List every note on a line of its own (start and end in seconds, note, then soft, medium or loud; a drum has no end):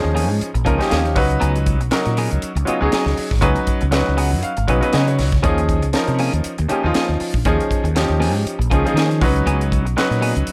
0.00 0.48 F3 medium
0.00 0.48 C#4 medium
0.00 0.48 D#4 medium
0.00 0.49 G#4 medium
0.00 muted clean electric guitar stroke soft
0.04 0.29 D#2 medium
0.15 0.30 F3 medium
0.15 0.29 A#3 medium
0.15 0.29 C#4 medium
0.15 0.29 G#4 medium
0.15 open hi-hat medium
0.29 0.39 G#2 medium
0.29 muted clean electric guitar stroke soft
0.41 muted fretless electric bass stroke soft
0.41 closed hi-hat medium
0.54 0.64 A#1 medium
0.54 muted clean electric guitar stroke medium
0.54 closed hi-hat soft
0.65 0.78 C#2 medium
0.65 0.80 F3 medium
0.65 0.76 F3 medium
0.65 0.79 A#3 medium
0.65 0.76 C#4 medium
0.65 0.79 C#4 medium
0.65 0.77 D#4 medium
0.65 0.78 G#4 medium
0.65 0.77 A#4 medium
0.65 0.89 D#5 medium
0.65 kick medium
0.65 closed hi-hat medium
0.78 1.15 F3 medium
0.78 0.89 A#3 medium
0.78 1.14 C#4 medium
0.78 0.90 C#4 medium
0.78 1.15 D#4 medium
0.78 1.17 G4 medium
0.78 0.89 G#4 medium
0.78 snare soft
0.78 closed hi-hat soft
0.90 1.16 D#2 loud
0.90 1.05 F3 medium
0.90 1.04 A#3 medium
0.90 1.04 C#4 medium
0.90 1.04 G#4 medium
0.90 1.14 F5 medium
0.90 snare loud
0.90 closed hi-hat medium
1.05 muted clean electric guitar stroke soft
1.05 closed hi-hat soft
1.15 1.37 C#2 medium
1.15 1.78 F#3 medium
1.15 1.78 C#4 medium
1.15 1.78 D#4 medium
1.15 1.79 B4 loud
1.15 1.40 F#5 medium
1.15 muted clean electric guitar stroke soft
1.15 kick loud
1.15 open hi-hat medium
1.30 closed hi-hat soft
1.40 1.80 C#2 medium
1.40 1.57 F#3 medium
1.40 1.57 B3 medium
1.40 1.57 D#4 loud
1.40 1.58 G#4 medium
1.40 closed hi-hat medium
1.55 closed hi-hat soft
1.66 muted clean electric guitar stroke soft
1.66 kick medium
1.66 closed hi-hat medium
1.80 1.89 B1 medium
1.80 muted clean electric guitar stroke medium
1.80 closed hi-hat soft
1.91 2.49 F#3 medium
1.91 2.50 C#4 medium
1.91 2.50 D#4 medium
1.91 2.50 A#4 medium
1.91 muted clean electric guitar stroke soft
1.91 snare loud
1.91 closed hi-hat medium
2.05 2.26 A#2 medium
2.05 muted clean electric guitar stroke soft
2.05 closed hi-hat soft
2.17 2.31 F#3 medium
2.17 2.31 B3 medium
2.17 2.31 D#4 medium
2.17 2.30 G#4 medium
2.17 open hi-hat medium
2.31 2.41 C#2 medium
2.31 muted clean electric guitar stroke soft
2.31 closed hi-hat soft
2.42 closed hi-hat medium
2.55 2.65 C#2 medium
2.55 muted clean electric guitar stroke soft
2.55 closed hi-hat soft
2.65 2.77 F#3 medium
2.65 2.82 F#3 medium
2.65 2.82 B3 medium
2.65 2.77 C#4 medium
2.65 2.78 D#4 medium
2.65 2.81 D#4 medium
2.65 2.78 F4 medium
2.65 2.80 G#4 medium
2.65 closed hi-hat medium
2.81 2.90 C#2 medium
2.81 3.28 F#3 medium
2.81 2.93 B3 medium
2.81 3.29 C#4 medium
2.81 3.29 D#4 medium
2.81 2.93 D#4 medium
2.81 2.93 G#4 medium
2.81 3.29 G#4 medium
2.92 3.07 F#3 medium
2.92 3.07 B3 medium
2.92 3.06 D#4 medium
2.92 3.06 G#4 medium
2.92 muted fretless electric bass stroke soft
2.92 snare loud
2.92 closed hi-hat medium
3.06 3.15 C#2 medium
3.06 muted clean electric guitar stroke soft
3.06 snare soft
3.17 muted clean electric guitar stroke soft
3.17 open hi-hat medium
3.31 3.41 G#1 medium
3.31 kick medium
3.31 snare soft
3.41 3.54 C#2 medium
3.41 3.81 F#3 medium
3.41 3.58 F#3 medium
3.41 3.59 B3 medium
3.41 3.82 C#4 medium
3.41 3.59 D#4 loud
3.41 3.82 D#4 medium
3.41 3.59 G#4 medium
3.41 3.82 B4 loud
3.41 kick loud
3.41 closed hi-hat medium
3.56 closed hi-hat soft
3.67 muted clean electric guitar stroke soft
3.67 muted fretless electric bass stroke soft
3.67 kick medium
3.67 closed hi-hat medium
3.81 4.03 C#2 medium
3.81 muted clean electric guitar stroke soft
3.81 closed hi-hat soft
3.91 4.50 F#3 medium
3.91 4.50 C#4 medium
3.91 4.50 D#4 medium
3.91 4.51 B4 medium
3.91 muted clean electric guitar stroke soft
3.91 snare loud
3.91 closed hi-hat medium
4.07 4.34 C#2 medium
4.07 muted clean electric guitar stroke soft
4.17 4.32 F#3 medium
4.17 4.31 B3 medium
4.17 4.32 D#4 medium
4.17 4.31 G#4 medium
4.17 4.42 F#5 medium
4.17 open hi-hat medium
4.33 4.42 F#2 medium
4.43 4.90 F5 medium
4.43 muted fretless electric bass stroke soft
4.43 closed hi-hat medium
4.57 4.66 G#1 medium
4.57 muted clean electric guitar stroke soft
4.57 closed hi-hat soft
4.68 4.80 B1 loud
4.68 4.79 F#3 medium
4.68 4.82 F#3 medium
4.68 4.83 B3 medium
4.68 4.79 C#4 medium
4.68 4.79 D#4 medium
4.68 4.82 D#4 medium
4.68 4.82 G#4 medium
4.68 4.80 B4 medium
4.68 kick medium
4.68 closed hi-hat medium
4.81 5.29 F#3 medium
4.81 4.93 B3 soft
4.81 5.29 C#4 medium
4.81 5.29 D#4 medium
4.81 4.93 D#4 medium
4.81 4.93 G#4 medium
4.81 5.30 B4 medium
4.81 closed hi-hat soft
4.93 5.20 C#3 loud
4.93 5.07 F#3 medium
4.93 5.07 B3 medium
4.93 5.06 D#4 medium
4.93 5.06 G#4 medium
4.93 5.07 D#5 medium
4.93 snare medium
4.93 closed hi-hat medium
5.07 5.42 C#5 medium
5.07 muted clean electric guitar stroke soft
5.07 closed hi-hat soft
5.17 5.39 C#2 medium
5.17 muted clean electric guitar stroke soft
5.17 snare soft
5.17 open hi-hat medium
5.32 kick medium
5.32 snare soft
5.42 5.83 D#2 loud
5.42 5.59 F3 medium
5.42 5.83 F3 medium
5.42 5.60 A#3 medium
5.42 5.60 C#4 medium
5.42 5.83 C#4 medium
5.42 5.83 D#4 medium
5.42 5.60 G#4 medium
5.42 5.84 G#4 loud
5.42 kick loud
5.42 closed hi-hat medium
5.58 closed hi-hat soft
5.68 muted clean electric guitar stroke soft
5.68 kick medium
5.68 closed hi-hat medium
5.82 5.92 C#2 medium
5.82 muted clean electric guitar stroke soft
5.82 closed hi-hat soft
5.93 6.52 F3 medium
5.93 6.52 C#4 medium
5.93 6.53 D#4 medium
5.93 6.53 A#4 medium
5.93 muted clean electric guitar stroke soft
5.93 snare medium
5.93 closed hi-hat medium
6.08 6.28 C3 medium
6.08 muted clean electric guitar stroke soft
6.08 closed hi-hat soft
6.19 6.33 F3 medium
6.19 6.33 A#3 medium
6.19 6.33 C#4 medium
6.19 6.33 G#4 medium
6.19 open hi-hat medium
6.33 6.42 D#2 medium
6.33 muted clean electric guitar stroke soft
6.33 closed hi-hat soft
6.44 muted fretless electric bass stroke soft
6.44 closed hi-hat medium
6.58 6.68 D#2 loud
6.58 muted clean electric guitar stroke soft
6.58 closed hi-hat soft
6.68 6.80 F3 medium
6.68 6.84 F3 medium
6.68 6.84 A#3 medium
6.68 6.80 C#4 medium
6.68 6.83 C#4 medium
6.68 6.80 D#4 medium
6.68 6.80 G4 medium
6.68 6.82 G#4 medium
6.68 closed hi-hat medium
6.83 6.93 D#2 medium
6.83 7.31 F3 medium
6.83 6.94 A#3 soft
6.83 6.94 C#4 soft
6.83 7.32 C#4 medium
6.83 7.32 D#4 medium
6.83 7.32 F4 medium
6.83 6.95 G#4 medium
6.94 7.09 F3 medium
6.94 7.08 A#3 medium
6.94 7.08 C#4 medium
6.94 7.08 G#4 medium
6.94 muted fretless electric bass stroke soft
6.94 snare loud
6.94 closed hi-hat medium
7.09 7.18 D#2 medium
7.09 muted clean electric guitar stroke soft
7.20 muted fretless electric bass stroke soft
7.20 muted clean electric guitar stroke soft
7.20 open hi-hat medium
7.34 7.43 A#1 medium
7.34 kick medium
7.45 7.57 D#2 medium
7.45 7.85 F3 medium
7.45 7.62 F3 medium
7.45 7.62 A#3 medium
7.45 7.62 C#4 medium
7.45 7.85 C#4 medium
7.45 7.86 D#4 medium
7.45 7.62 G#4 medium
7.45 7.86 G#4 loud
7.45 kick loud
7.45 closed hi-hat medium
7.60 closed hi-hat soft
7.71 muted clean electric guitar stroke soft
7.71 muted fretless electric bass stroke soft
7.71 kick medium
7.71 closed hi-hat medium
7.84 8.05 D#2 medium
7.84 muted clean electric guitar stroke soft
7.84 closed hi-hat soft
7.95 8.54 F3 medium
7.95 8.54 C#4 medium
7.95 8.54 D#4 medium
7.95 8.54 G4 medium
7.95 muted clean electric guitar stroke soft
7.95 snare loud
7.95 closed hi-hat medium
8.08 8.33 D#2 medium
8.08 muted clean electric guitar stroke soft
8.20 8.34 F3 medium
8.20 8.33 A#3 medium
8.20 8.33 C#4 medium
8.20 8.33 G#4 medium
8.20 open hi-hat medium
8.33 8.43 G#2 medium
8.33 muted clean electric guitar stroke soft
8.45 muted fretless electric bass stroke soft
8.45 closed hi-hat medium
8.59 8.68 A#1 medium
8.59 muted clean electric guitar stroke soft
8.59 closed hi-hat soft
8.70 8.83 C#2 medium
8.70 8.85 F3 medium
8.70 8.82 F3 medium
8.70 8.84 A#3 medium
8.70 8.84 C#4 medium
8.70 8.82 C#4 medium
8.70 8.82 D#4 medium
8.70 8.83 G#4 medium
8.70 kick medium
8.70 closed hi-hat medium
8.84 9.21 F3 medium
8.84 8.95 A#3 soft
8.84 8.95 C#4 medium
8.84 9.21 C#4 medium
8.84 9.21 D#4 medium
8.84 8.95 G#4 medium
8.84 9.22 G#4 medium
8.84 closed hi-hat soft
8.94 9.23 D#3 loud
8.94 9.10 F3 medium
8.94 9.09 A#3 medium
8.94 9.10 C#4 medium
8.94 9.09 G#4 loud
8.94 closed hi-hat medium
8.98 snare loud
9.10 muted clean electric guitar stroke soft
9.10 closed hi-hat soft
9.21 9.42 C#2 medium
9.21 9.83 F#3 medium
9.21 9.84 C#4 medium
9.21 9.84 D#4 medium
9.21 9.84 B4 loud
9.21 muted clean electric guitar stroke soft
9.21 kick loud
9.21 open hi-hat medium
9.36 closed hi-hat soft
9.46 9.85 C#2 loud
9.46 9.62 F#3 medium
9.46 9.63 B3 medium
9.46 9.63 D#4 medium
9.46 9.63 G#4 loud
9.46 closed hi-hat medium
9.61 closed hi-hat soft
9.71 muted clean electric guitar stroke soft
9.71 kick medium
9.71 closed hi-hat medium
9.85 9.94 B1 medium
9.85 muted clean electric guitar stroke medium
9.85 closed hi-hat soft
9.96 10.52 F#3 medium
9.96 10.52 C#4 medium
9.96 10.52 D#4 medium
9.96 10.52 B4 medium
9.96 muted clean electric guitar stroke soft
9.96 snare loud
9.96 closed hi-hat medium
10.10 10.31 A#2 medium
10.10 muted clean electric guitar stroke soft
10.10 closed hi-hat soft
10.21 10.36 F#3 medium
10.21 10.35 B3 medium
10.21 10.34 D#4 medium
10.21 10.34 G#4 medium
10.21 open hi-hat medium
10.35 10.45 C#2 medium
10.35 muted clean electric guitar stroke soft
10.35 closed hi-hat soft
10.47 closed hi-hat medium